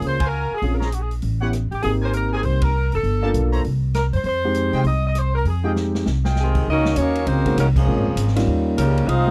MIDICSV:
0, 0, Header, 1, 8, 480
1, 0, Start_track
1, 0, Tempo, 302267
1, 985, Time_signature, 4, 2, 24, 8
1, 14780, End_track
2, 0, Start_track
2, 0, Title_t, "Trumpet section"
2, 0, Program_c, 0, 61
2, 317, Note_on_c, 0, 80, 88
2, 318, Note_on_c, 0, 70, 71
2, 319, Note_on_c, 0, 77, 71
2, 320, Note_on_c, 0, 66, 72
2, 944, Note_off_c, 0, 70, 0
2, 944, Note_off_c, 0, 80, 0
2, 945, Note_off_c, 0, 66, 0
2, 945, Note_off_c, 0, 77, 0
2, 1259, Note_on_c, 0, 82, 73
2, 1262, Note_on_c, 0, 72, 60
2, 1265, Note_on_c, 0, 68, 69
2, 1265, Note_on_c, 0, 73, 62
2, 1389, Note_off_c, 0, 82, 0
2, 1391, Note_off_c, 0, 72, 0
2, 1393, Note_off_c, 0, 68, 0
2, 1393, Note_off_c, 0, 73, 0
2, 2235, Note_on_c, 0, 67, 71
2, 2235, Note_on_c, 0, 71, 69
2, 2243, Note_on_c, 0, 78, 86
2, 2244, Note_on_c, 0, 73, 73
2, 2359, Note_off_c, 0, 67, 0
2, 2359, Note_off_c, 0, 71, 0
2, 2364, Note_off_c, 0, 73, 0
2, 2364, Note_off_c, 0, 78, 0
2, 3200, Note_on_c, 0, 70, 71
2, 3203, Note_on_c, 0, 67, 75
2, 3203, Note_on_c, 0, 80, 81
2, 3206, Note_on_c, 0, 72, 65
2, 3322, Note_off_c, 0, 70, 0
2, 3323, Note_off_c, 0, 67, 0
2, 3324, Note_off_c, 0, 80, 0
2, 3325, Note_off_c, 0, 72, 0
2, 3694, Note_on_c, 0, 70, 69
2, 3701, Note_on_c, 0, 67, 73
2, 3701, Note_on_c, 0, 72, 71
2, 3701, Note_on_c, 0, 80, 86
2, 3810, Note_off_c, 0, 70, 0
2, 3814, Note_off_c, 0, 72, 0
2, 3814, Note_off_c, 0, 80, 0
2, 3815, Note_off_c, 0, 67, 0
2, 5111, Note_on_c, 0, 70, 73
2, 5111, Note_on_c, 0, 81, 87
2, 5112, Note_on_c, 0, 77, 71
2, 5119, Note_on_c, 0, 67, 75
2, 5235, Note_off_c, 0, 70, 0
2, 5235, Note_off_c, 0, 81, 0
2, 5236, Note_off_c, 0, 77, 0
2, 5240, Note_off_c, 0, 67, 0
2, 5597, Note_on_c, 0, 72, 76
2, 5604, Note_on_c, 0, 73, 79
2, 5605, Note_on_c, 0, 82, 91
2, 5607, Note_on_c, 0, 64, 81
2, 5719, Note_off_c, 0, 72, 0
2, 5724, Note_off_c, 0, 73, 0
2, 5724, Note_off_c, 0, 82, 0
2, 5725, Note_off_c, 0, 64, 0
2, 7507, Note_on_c, 0, 68, 71
2, 7514, Note_on_c, 0, 79, 87
2, 7519, Note_on_c, 0, 65, 76
2, 7521, Note_on_c, 0, 75, 73
2, 7633, Note_off_c, 0, 68, 0
2, 7637, Note_off_c, 0, 79, 0
2, 7641, Note_off_c, 0, 65, 0
2, 7642, Note_off_c, 0, 75, 0
2, 8952, Note_on_c, 0, 79, 77
2, 8953, Note_on_c, 0, 75, 65
2, 8954, Note_on_c, 0, 65, 71
2, 8956, Note_on_c, 0, 68, 65
2, 9077, Note_off_c, 0, 75, 0
2, 9077, Note_off_c, 0, 79, 0
2, 9078, Note_off_c, 0, 65, 0
2, 9079, Note_off_c, 0, 68, 0
2, 9914, Note_on_c, 0, 75, 68
2, 9915, Note_on_c, 0, 79, 83
2, 9917, Note_on_c, 0, 65, 73
2, 9918, Note_on_c, 0, 68, 63
2, 10542, Note_off_c, 0, 75, 0
2, 10542, Note_off_c, 0, 79, 0
2, 10543, Note_off_c, 0, 65, 0
2, 10544, Note_off_c, 0, 68, 0
2, 14780, End_track
3, 0, Start_track
3, 0, Title_t, "Saxophone section"
3, 0, Program_c, 1, 65
3, 116, Note_on_c, 1, 72, 88
3, 372, Note_off_c, 1, 72, 0
3, 412, Note_on_c, 1, 70, 85
3, 849, Note_off_c, 1, 70, 0
3, 862, Note_on_c, 1, 68, 76
3, 1165, Note_off_c, 1, 68, 0
3, 1189, Note_on_c, 1, 70, 57
3, 1316, Note_on_c, 1, 68, 59
3, 1333, Note_off_c, 1, 70, 0
3, 1425, Note_off_c, 1, 68, 0
3, 1463, Note_on_c, 1, 66, 60
3, 1593, Note_on_c, 1, 68, 54
3, 1601, Note_off_c, 1, 66, 0
3, 1769, Note_off_c, 1, 68, 0
3, 2715, Note_on_c, 1, 67, 71
3, 2885, Note_off_c, 1, 67, 0
3, 2905, Note_on_c, 1, 68, 87
3, 3039, Note_off_c, 1, 68, 0
3, 3250, Note_on_c, 1, 72, 89
3, 3394, Note_off_c, 1, 72, 0
3, 3409, Note_on_c, 1, 70, 83
3, 3675, Note_off_c, 1, 70, 0
3, 3701, Note_on_c, 1, 68, 79
3, 3858, Note_off_c, 1, 68, 0
3, 3860, Note_on_c, 1, 72, 88
3, 4160, Note_off_c, 1, 72, 0
3, 4169, Note_on_c, 1, 70, 88
3, 4644, Note_off_c, 1, 70, 0
3, 4680, Note_on_c, 1, 69, 82
3, 5556, Note_off_c, 1, 69, 0
3, 6263, Note_on_c, 1, 70, 76
3, 6397, Note_off_c, 1, 70, 0
3, 6567, Note_on_c, 1, 72, 80
3, 6731, Note_off_c, 1, 72, 0
3, 6773, Note_on_c, 1, 72, 90
3, 7653, Note_off_c, 1, 72, 0
3, 7714, Note_on_c, 1, 75, 101
3, 8008, Note_off_c, 1, 75, 0
3, 8046, Note_on_c, 1, 75, 87
3, 8192, Note_off_c, 1, 75, 0
3, 8226, Note_on_c, 1, 72, 80
3, 8501, Note_on_c, 1, 70, 80
3, 8504, Note_off_c, 1, 72, 0
3, 8659, Note_off_c, 1, 70, 0
3, 8697, Note_on_c, 1, 68, 68
3, 9127, Note_off_c, 1, 68, 0
3, 10171, Note_on_c, 1, 51, 68
3, 10175, Note_on_c, 1, 68, 79
3, 10177, Note_on_c, 1, 60, 66
3, 10181, Note_on_c, 1, 67, 69
3, 10586, Note_off_c, 1, 51, 0
3, 10588, Note_off_c, 1, 68, 0
3, 10589, Note_off_c, 1, 60, 0
3, 10591, Note_off_c, 1, 67, 0
3, 10645, Note_on_c, 1, 66, 93
3, 10646, Note_on_c, 1, 70, 85
3, 10646, Note_on_c, 1, 75, 105
3, 10650, Note_on_c, 1, 61, 89
3, 11062, Note_off_c, 1, 66, 0
3, 11063, Note_off_c, 1, 70, 0
3, 11063, Note_off_c, 1, 75, 0
3, 11065, Note_off_c, 1, 61, 0
3, 11073, Note_on_c, 1, 63, 79
3, 11075, Note_on_c, 1, 73, 92
3, 11080, Note_on_c, 1, 66, 80
3, 11088, Note_on_c, 1, 58, 78
3, 11536, Note_off_c, 1, 63, 0
3, 11537, Note_off_c, 1, 58, 0
3, 11537, Note_off_c, 1, 66, 0
3, 11549, Note_off_c, 1, 73, 0
3, 11555, Note_on_c, 1, 63, 81
3, 11556, Note_on_c, 1, 58, 82
3, 11557, Note_on_c, 1, 66, 78
3, 11560, Note_on_c, 1, 72, 94
3, 12020, Note_off_c, 1, 63, 0
3, 12030, Note_off_c, 1, 58, 0
3, 12030, Note_off_c, 1, 66, 0
3, 12031, Note_off_c, 1, 72, 0
3, 12039, Note_on_c, 1, 63, 74
3, 12051, Note_on_c, 1, 54, 73
3, 12057, Note_on_c, 1, 61, 74
3, 12058, Note_on_c, 1, 70, 88
3, 12171, Note_off_c, 1, 63, 0
3, 12180, Note_off_c, 1, 54, 0
3, 12185, Note_off_c, 1, 61, 0
3, 12186, Note_off_c, 1, 70, 0
3, 12329, Note_on_c, 1, 53, 66
3, 12336, Note_on_c, 1, 61, 64
3, 12338, Note_on_c, 1, 58, 68
3, 12340, Note_on_c, 1, 68, 80
3, 13223, Note_off_c, 1, 53, 0
3, 13227, Note_off_c, 1, 61, 0
3, 13228, Note_off_c, 1, 58, 0
3, 13229, Note_off_c, 1, 68, 0
3, 13936, Note_on_c, 1, 63, 81
3, 13944, Note_on_c, 1, 55, 83
3, 13946, Note_on_c, 1, 61, 82
3, 13949, Note_on_c, 1, 70, 89
3, 14386, Note_off_c, 1, 63, 0
3, 14391, Note_off_c, 1, 55, 0
3, 14392, Note_off_c, 1, 61, 0
3, 14393, Note_off_c, 1, 70, 0
3, 14410, Note_on_c, 1, 77, 115
3, 14415, Note_on_c, 1, 63, 102
3, 14420, Note_on_c, 1, 68, 97
3, 14428, Note_on_c, 1, 72, 96
3, 14780, Note_off_c, 1, 63, 0
3, 14780, Note_off_c, 1, 68, 0
3, 14780, Note_off_c, 1, 72, 0
3, 14780, Note_off_c, 1, 77, 0
3, 14780, End_track
4, 0, Start_track
4, 0, Title_t, "Grand piano"
4, 0, Program_c, 2, 0
4, 0, Note_on_c, 2, 58, 54
4, 0, Note_on_c, 2, 61, 49
4, 0, Note_on_c, 2, 65, 49
4, 0, Note_on_c, 2, 68, 58
4, 259, Note_off_c, 2, 61, 0
4, 262, Note_off_c, 2, 58, 0
4, 266, Note_off_c, 2, 65, 0
4, 267, Note_off_c, 2, 68, 0
4, 992, Note_on_c, 2, 60, 44
4, 996, Note_on_c, 2, 68, 52
4, 1000, Note_on_c, 2, 61, 46
4, 1001, Note_on_c, 2, 65, 44
4, 1258, Note_off_c, 2, 60, 0
4, 1261, Note_off_c, 2, 68, 0
4, 1263, Note_off_c, 2, 61, 0
4, 1263, Note_off_c, 2, 65, 0
4, 2253, Note_on_c, 2, 59, 53
4, 2261, Note_on_c, 2, 61, 46
4, 2263, Note_on_c, 2, 67, 61
4, 2266, Note_on_c, 2, 64, 52
4, 2409, Note_off_c, 2, 59, 0
4, 2413, Note_off_c, 2, 61, 0
4, 2414, Note_off_c, 2, 67, 0
4, 2416, Note_off_c, 2, 64, 0
4, 2900, Note_on_c, 2, 58, 55
4, 2908, Note_on_c, 2, 60, 51
4, 2909, Note_on_c, 2, 63, 46
4, 2920, Note_on_c, 2, 67, 62
4, 4232, Note_off_c, 2, 58, 0
4, 4236, Note_off_c, 2, 60, 0
4, 4236, Note_off_c, 2, 63, 0
4, 4241, Note_off_c, 2, 67, 0
4, 5122, Note_on_c, 2, 62, 60
4, 5124, Note_on_c, 2, 58, 64
4, 5126, Note_on_c, 2, 69, 74
4, 5131, Note_on_c, 2, 65, 59
4, 5744, Note_off_c, 2, 62, 0
4, 5745, Note_off_c, 2, 58, 0
4, 5746, Note_off_c, 2, 69, 0
4, 5749, Note_off_c, 2, 65, 0
4, 7062, Note_on_c, 2, 56, 62
4, 7064, Note_on_c, 2, 60, 55
4, 7064, Note_on_c, 2, 67, 68
4, 7065, Note_on_c, 2, 63, 56
4, 7675, Note_off_c, 2, 56, 0
4, 7676, Note_off_c, 2, 60, 0
4, 7676, Note_off_c, 2, 63, 0
4, 7676, Note_off_c, 2, 67, 0
4, 8950, Note_on_c, 2, 56, 62
4, 8956, Note_on_c, 2, 60, 53
4, 8963, Note_on_c, 2, 67, 69
4, 8965, Note_on_c, 2, 63, 57
4, 9580, Note_off_c, 2, 56, 0
4, 9582, Note_off_c, 2, 60, 0
4, 9586, Note_off_c, 2, 67, 0
4, 9587, Note_off_c, 2, 63, 0
4, 11833, Note_on_c, 2, 56, 61
4, 11835, Note_on_c, 2, 58, 55
4, 11841, Note_on_c, 2, 66, 69
4, 11842, Note_on_c, 2, 61, 51
4, 11845, Note_on_c, 2, 63, 50
4, 12000, Note_off_c, 2, 56, 0
4, 12001, Note_off_c, 2, 58, 0
4, 12004, Note_off_c, 2, 61, 0
4, 12004, Note_off_c, 2, 66, 0
4, 12006, Note_off_c, 2, 63, 0
4, 12486, Note_on_c, 2, 56, 61
4, 12502, Note_on_c, 2, 60, 54
4, 12504, Note_on_c, 2, 58, 57
4, 12505, Note_on_c, 2, 61, 54
4, 12508, Note_on_c, 2, 65, 69
4, 12765, Note_off_c, 2, 56, 0
4, 12773, Note_off_c, 2, 60, 0
4, 12774, Note_off_c, 2, 58, 0
4, 12775, Note_off_c, 2, 61, 0
4, 12776, Note_off_c, 2, 65, 0
4, 13270, Note_on_c, 2, 55, 61
4, 13274, Note_on_c, 2, 63, 56
4, 13277, Note_on_c, 2, 58, 62
4, 13277, Note_on_c, 2, 61, 59
4, 13280, Note_on_c, 2, 65, 69
4, 13901, Note_off_c, 2, 55, 0
4, 13903, Note_off_c, 2, 63, 0
4, 13904, Note_off_c, 2, 58, 0
4, 13904, Note_off_c, 2, 61, 0
4, 13906, Note_off_c, 2, 65, 0
4, 14711, Note_on_c, 2, 56, 62
4, 14713, Note_on_c, 2, 58, 54
4, 14721, Note_on_c, 2, 60, 60
4, 14726, Note_on_c, 2, 67, 68
4, 14727, Note_on_c, 2, 63, 58
4, 14780, Note_off_c, 2, 56, 0
4, 14780, Note_off_c, 2, 58, 0
4, 14780, Note_off_c, 2, 60, 0
4, 14780, Note_off_c, 2, 63, 0
4, 14780, Note_off_c, 2, 67, 0
4, 14780, End_track
5, 0, Start_track
5, 0, Title_t, "Trombone section"
5, 0, Program_c, 3, 61
5, 10172, Note_on_c, 3, 48, 71
5, 10175, Note_on_c, 3, 51, 70
5, 10176, Note_on_c, 3, 56, 73
5, 10586, Note_off_c, 3, 48, 0
5, 10588, Note_off_c, 3, 51, 0
5, 10588, Note_off_c, 3, 56, 0
5, 10631, Note_on_c, 3, 58, 92
5, 10631, Note_on_c, 3, 63, 92
5, 10634, Note_on_c, 3, 51, 86
5, 11055, Note_off_c, 3, 58, 0
5, 11055, Note_off_c, 3, 63, 0
5, 11057, Note_off_c, 3, 51, 0
5, 11079, Note_on_c, 3, 61, 84
5, 11087, Note_on_c, 3, 58, 82
5, 11089, Note_on_c, 3, 51, 80
5, 11521, Note_off_c, 3, 51, 0
5, 11540, Note_on_c, 3, 51, 72
5, 11544, Note_on_c, 3, 60, 76
5, 11547, Note_on_c, 3, 49, 75
5, 11551, Note_off_c, 3, 61, 0
5, 11555, Note_off_c, 3, 58, 0
5, 12008, Note_off_c, 3, 51, 0
5, 12012, Note_off_c, 3, 49, 0
5, 12024, Note_off_c, 3, 60, 0
5, 12027, Note_on_c, 3, 51, 77
5, 12030, Note_on_c, 3, 58, 72
5, 12031, Note_on_c, 3, 49, 75
5, 12161, Note_off_c, 3, 51, 0
5, 12164, Note_off_c, 3, 58, 0
5, 12165, Note_off_c, 3, 49, 0
5, 12295, Note_on_c, 3, 49, 67
5, 12299, Note_on_c, 3, 53, 68
5, 12301, Note_on_c, 3, 56, 68
5, 13206, Note_off_c, 3, 49, 0
5, 13208, Note_off_c, 3, 53, 0
5, 13209, Note_off_c, 3, 56, 0
5, 13900, Note_on_c, 3, 49, 85
5, 13913, Note_on_c, 3, 58, 83
5, 13914, Note_on_c, 3, 55, 80
5, 14367, Note_off_c, 3, 49, 0
5, 14374, Note_off_c, 3, 58, 0
5, 14375, Note_off_c, 3, 55, 0
5, 14403, Note_on_c, 3, 60, 99
5, 14410, Note_on_c, 3, 65, 96
5, 14417, Note_on_c, 3, 56, 97
5, 14780, Note_off_c, 3, 56, 0
5, 14780, Note_off_c, 3, 60, 0
5, 14780, Note_off_c, 3, 65, 0
5, 14780, End_track
6, 0, Start_track
6, 0, Title_t, "Upright bass"
6, 0, Program_c, 4, 32
6, 21, Note_on_c, 4, 37, 82
6, 748, Note_off_c, 4, 37, 0
6, 982, Note_on_c, 4, 34, 73
6, 1893, Note_off_c, 4, 34, 0
6, 1947, Note_on_c, 4, 33, 74
6, 2670, Note_off_c, 4, 33, 0
6, 2721, Note_on_c, 4, 33, 56
6, 2888, Note_off_c, 4, 33, 0
6, 2922, Note_on_c, 4, 32, 71
6, 3823, Note_off_c, 4, 32, 0
6, 3870, Note_on_c, 4, 36, 79
6, 4591, Note_off_c, 4, 36, 0
6, 4654, Note_on_c, 4, 30, 54
6, 4806, Note_off_c, 4, 30, 0
6, 4815, Note_on_c, 4, 31, 74
6, 5263, Note_off_c, 4, 31, 0
6, 5302, Note_on_c, 4, 35, 75
6, 5747, Note_off_c, 4, 35, 0
6, 5800, Note_on_c, 4, 36, 83
6, 6517, Note_off_c, 4, 36, 0
6, 6565, Note_on_c, 4, 42, 57
6, 6718, Note_off_c, 4, 42, 0
6, 6728, Note_on_c, 4, 41, 78
6, 7459, Note_off_c, 4, 41, 0
6, 7504, Note_on_c, 4, 48, 66
6, 7674, Note_off_c, 4, 48, 0
6, 7683, Note_on_c, 4, 36, 79
6, 8604, Note_off_c, 4, 36, 0
6, 8649, Note_on_c, 4, 41, 74
6, 9567, Note_off_c, 4, 41, 0
6, 9623, Note_on_c, 4, 36, 82
6, 10535, Note_off_c, 4, 36, 0
6, 10593, Note_on_c, 4, 37, 78
6, 11050, Note_off_c, 4, 37, 0
6, 11059, Note_on_c, 4, 39, 88
6, 11527, Note_off_c, 4, 39, 0
6, 11536, Note_on_c, 4, 37, 81
6, 11998, Note_off_c, 4, 37, 0
6, 12007, Note_on_c, 4, 36, 87
6, 12481, Note_off_c, 4, 36, 0
6, 12495, Note_on_c, 4, 34, 75
6, 12661, Note_off_c, 4, 34, 0
6, 12661, Note_on_c, 4, 32, 58
6, 12814, Note_off_c, 4, 32, 0
6, 12824, Note_on_c, 4, 29, 66
6, 12945, Note_off_c, 4, 29, 0
6, 12955, Note_on_c, 4, 32, 84
6, 13434, Note_off_c, 4, 32, 0
6, 13450, Note_on_c, 4, 39, 84
6, 13922, Note_off_c, 4, 39, 0
6, 13939, Note_on_c, 4, 37, 90
6, 14398, Note_off_c, 4, 37, 0
6, 14407, Note_on_c, 4, 36, 74
6, 14780, Note_off_c, 4, 36, 0
6, 14780, End_track
7, 0, Start_track
7, 0, Title_t, "Muted upright bass strokes"
7, 808, Note_on_c, 9, 29, 33
7, 967, Note_off_c, 9, 29, 0
7, 14780, End_track
8, 0, Start_track
8, 0, Title_t, "Drums"
8, 30, Note_on_c, 9, 46, 37
8, 189, Note_off_c, 9, 46, 0
8, 317, Note_on_c, 9, 51, 64
8, 323, Note_on_c, 9, 36, 70
8, 475, Note_off_c, 9, 51, 0
8, 482, Note_off_c, 9, 36, 0
8, 987, Note_on_c, 9, 46, 35
8, 1146, Note_off_c, 9, 46, 0
8, 1291, Note_on_c, 9, 38, 33
8, 1450, Note_off_c, 9, 38, 0
8, 1463, Note_on_c, 9, 42, 49
8, 1622, Note_off_c, 9, 42, 0
8, 1762, Note_on_c, 9, 46, 37
8, 1920, Note_off_c, 9, 46, 0
8, 1936, Note_on_c, 9, 46, 39
8, 2095, Note_off_c, 9, 46, 0
8, 2428, Note_on_c, 9, 42, 44
8, 2431, Note_on_c, 9, 37, 56
8, 2587, Note_off_c, 9, 42, 0
8, 2590, Note_off_c, 9, 37, 0
8, 2729, Note_on_c, 9, 46, 34
8, 2888, Note_off_c, 9, 46, 0
8, 2898, Note_on_c, 9, 46, 41
8, 3057, Note_off_c, 9, 46, 0
8, 3385, Note_on_c, 9, 42, 50
8, 3544, Note_off_c, 9, 42, 0
8, 3856, Note_on_c, 9, 46, 41
8, 4015, Note_off_c, 9, 46, 0
8, 4152, Note_on_c, 9, 51, 72
8, 4162, Note_on_c, 9, 36, 73
8, 4310, Note_off_c, 9, 51, 0
8, 4321, Note_off_c, 9, 36, 0
8, 4633, Note_on_c, 9, 46, 35
8, 4792, Note_off_c, 9, 46, 0
8, 4827, Note_on_c, 9, 46, 41
8, 4985, Note_off_c, 9, 46, 0
8, 5305, Note_on_c, 9, 42, 53
8, 5464, Note_off_c, 9, 42, 0
8, 5608, Note_on_c, 9, 46, 38
8, 5766, Note_off_c, 9, 46, 0
8, 5785, Note_on_c, 9, 46, 39
8, 5944, Note_off_c, 9, 46, 0
8, 6261, Note_on_c, 9, 42, 47
8, 6264, Note_on_c, 9, 37, 50
8, 6264, Note_on_c, 9, 38, 33
8, 6420, Note_off_c, 9, 42, 0
8, 6423, Note_off_c, 9, 37, 0
8, 6423, Note_off_c, 9, 38, 0
8, 6560, Note_on_c, 9, 46, 34
8, 6562, Note_on_c, 9, 36, 45
8, 6719, Note_off_c, 9, 46, 0
8, 6721, Note_off_c, 9, 36, 0
8, 6732, Note_on_c, 9, 46, 41
8, 6890, Note_off_c, 9, 46, 0
8, 7214, Note_on_c, 9, 42, 52
8, 7373, Note_off_c, 9, 42, 0
8, 7511, Note_on_c, 9, 46, 39
8, 7670, Note_off_c, 9, 46, 0
8, 7690, Note_on_c, 9, 46, 40
8, 7849, Note_off_c, 9, 46, 0
8, 8176, Note_on_c, 9, 42, 48
8, 8179, Note_on_c, 9, 37, 50
8, 8334, Note_off_c, 9, 42, 0
8, 8337, Note_off_c, 9, 37, 0
8, 8658, Note_on_c, 9, 46, 40
8, 8817, Note_off_c, 9, 46, 0
8, 9148, Note_on_c, 9, 38, 41
8, 9307, Note_off_c, 9, 38, 0
8, 9445, Note_on_c, 9, 38, 51
8, 9604, Note_off_c, 9, 38, 0
8, 9626, Note_on_c, 9, 38, 69
8, 9785, Note_off_c, 9, 38, 0
8, 9925, Note_on_c, 9, 38, 65
8, 10084, Note_off_c, 9, 38, 0
8, 10093, Note_on_c, 9, 38, 47
8, 10252, Note_off_c, 9, 38, 0
8, 10399, Note_on_c, 9, 49, 62
8, 10404, Note_on_c, 9, 36, 64
8, 10558, Note_off_c, 9, 49, 0
8, 10563, Note_off_c, 9, 36, 0
8, 10881, Note_on_c, 9, 38, 58
8, 11040, Note_off_c, 9, 38, 0
8, 11050, Note_on_c, 9, 44, 54
8, 11050, Note_on_c, 9, 51, 65
8, 11209, Note_off_c, 9, 44, 0
8, 11209, Note_off_c, 9, 51, 0
8, 11359, Note_on_c, 9, 51, 49
8, 11518, Note_off_c, 9, 51, 0
8, 11538, Note_on_c, 9, 51, 63
8, 11697, Note_off_c, 9, 51, 0
8, 11840, Note_on_c, 9, 51, 49
8, 11841, Note_on_c, 9, 36, 53
8, 11999, Note_off_c, 9, 51, 0
8, 12000, Note_off_c, 9, 36, 0
8, 12030, Note_on_c, 9, 44, 62
8, 12030, Note_on_c, 9, 51, 67
8, 12189, Note_off_c, 9, 44, 0
8, 12189, Note_off_c, 9, 51, 0
8, 12322, Note_on_c, 9, 36, 80
8, 12327, Note_on_c, 9, 49, 68
8, 12480, Note_off_c, 9, 36, 0
8, 12486, Note_off_c, 9, 49, 0
8, 12972, Note_on_c, 9, 44, 61
8, 12972, Note_on_c, 9, 51, 74
8, 13131, Note_off_c, 9, 44, 0
8, 13131, Note_off_c, 9, 51, 0
8, 13141, Note_on_c, 9, 38, 29
8, 13282, Note_on_c, 9, 51, 71
8, 13300, Note_off_c, 9, 38, 0
8, 13307, Note_on_c, 9, 38, 45
8, 13440, Note_off_c, 9, 51, 0
8, 13466, Note_off_c, 9, 38, 0
8, 13940, Note_on_c, 9, 44, 54
8, 13940, Note_on_c, 9, 51, 73
8, 14099, Note_off_c, 9, 44, 0
8, 14099, Note_off_c, 9, 51, 0
8, 14251, Note_on_c, 9, 51, 47
8, 14410, Note_off_c, 9, 51, 0
8, 14428, Note_on_c, 9, 51, 60
8, 14587, Note_off_c, 9, 51, 0
8, 14780, End_track
0, 0, End_of_file